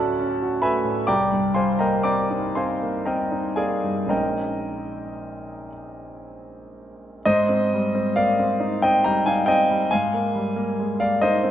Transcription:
grand piano
Already playing: D2 A2 F#3 A3 C#4 F#4 A4 D5 F#5 A5 B5 D6 F#6 A6
0.19 C#4
0.42 F#4
0.62 A3 B4 E5 G#5 B5
0.85 A2
1.07 C2 D5 G5 A#5 D6
1.32 G2
1.54 G3 C5 F5 G#5 C6
1.79 A#3 A#4 D#5 G5 A#5
2.03 C4 D5 G5 A#5 D6
2.30 D#4
2.55 C4 C5 F5 G#5 C6
2.82 A#3
3.05 C4 A#4 D#5 G5 A#5
3.32 D#4
3.56 A#3 G#4 D5 F5 G#5
3.84 G2
4.06 A#1 G#3 C4 C#4 D#4 A#5
4.10 A#4 D#5 G5
7.25 G#2 C5 D#5
7.49 C4
7.74 G3
7.95 C4
8.16 A#3 D5 F5
8.39 C4
8.60 D#4
8.82 C4 D#5 G5
9.04 G3 G5 A#5
9.26 D#4 F5 G#5
9.46 C4 D#5 G5
9.70 G3
9.91 G#2 F5 G#5
10.14 A#3
10.35 G3
10.56 A#3
10.80 G#3
11.00 A#3 D5 F5
11.22 D#4 C5 D#5
11.44 C4

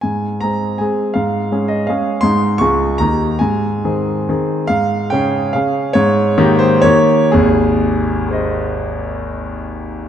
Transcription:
grand piano
0.01 G#2 G#5
0.41 G#3 C4 G#4 A#5
0.78 G#3 C4 G#4 G#5
1.14 G#2 F5
1.52 G#3 C#4 G#4
1.68 D#5
1.87 G#3 C#4 G#4 F5
2.21 G#2 G#3 D#4 G#4 C6
2.58 C#2 G#3 F4 G#4 C#6
2.98 D#2 D#3 D#4 G4 A#5
3.39 G#2 G#5
3.84 D#3 C4 G#4
4.29 D#3 C4 G#4
4.67 G#2 F5
5.10 C#3 C#4 G#4 G5
5.53 C#3 C#4 G#4 F5
5.93 G#2 C#5
6.38 D#3 A#3 G4
6.59 C5
6.82 D#3 A#3 G4 C#5
7.32 G#1 D#2 G#4
8.29 G#4 C5
8.33 D#5

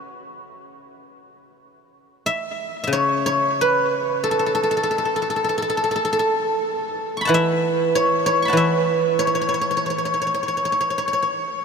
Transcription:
guzheng
Already playing: A4
2.26 E5
2.84 C#3 E5
2.93 C#5
3.26 C#5
3.61 B4
4.24 A4
4.31 A4
4.39 A4
4.46 A4
4.55 A4
4.63 A4
4.71 A4
4.77 A4
4.83 A4
4.91 A4
4.98 A4
5.05 A4
5.16 A4
5.22 A4
5.30 A4
5.36 A4
5.44 A4
5.49 A4
5.58 A4
5.62 A4
5.70 A4
5.77 A4
5.84 A4
5.91 A4
5.96 A4
6.05 A4
6.13 A4
6.19 A4
7.17 C#6
7.21 B5
7.25 E3 F#5 A5
7.34 E5
7.95 C#5
8.26 C#5
8.42 B5 C#6
8.48 F#5 A5
8.53 E3
8.57 E5
9.19 C#5
9.27 C#5
9.35 C#5
9.41 C#5
9.49 C#5
9.54 C#5
9.61 C#5
9.71 C#5
9.77 C#5
9.86 C#5
9.90 C#5
9.98 C#5
10.05 C#5
10.14 C#5
10.22 C#5
10.27 C#5
10.34 C#5
10.43 C#5
10.48 C#5
10.57 C#5
10.65 C#5
10.72 C#5
10.81 C#5
10.90 C#5
10.98 C#5
11.08 C#5
11.13 C#5
11.22 C#5

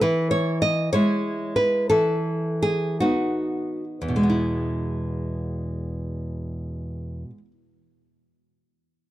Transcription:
nylon-string guitar
0.01 E3 B4
0.31 C#5
0.62 D#5
0.93 G#3 E4 C#5
1.56 B4
1.90 E3 A4
2.62 G#4
3.00 B3 D#4 F#4
4.02 E2
4.08 B2
4.16 G#3
4.23 B3
4.30 E4

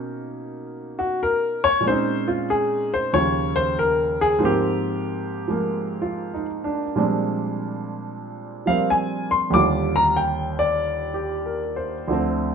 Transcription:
grand piano
Already playing: B2 A#3 C#4 D#4
0.99 F#4
1.23 A#4
1.64 C#5
1.81 A#2 G#3
1.86 C4 C#4 C5
1.91 D#4
2.28 F4
2.50 G#4
2.94 C5
3.13 D#2 C#3 F3 F4 C#5
3.56 C5
3.79 A#4
4.21 G#4
4.39 G#2 F3 A#3
4.43 C4 G4
5.48 F3 G#3 A#3
6.02 F4
6.34 D#4
6.64 D4
6.96 A#2 F3 G3 G#3 C4 D4
8.66 F3 G3 A#3 C4 F5
8.90 G#5
9.31 C6
9.50 D#2 D3 G3 D6
9.55 F4
9.96 A#5
10.17 G5
10.59 D5
11.14 G4
11.45 A#4
11.76 C5
12.08 D2 D3 F3
12.13 C4

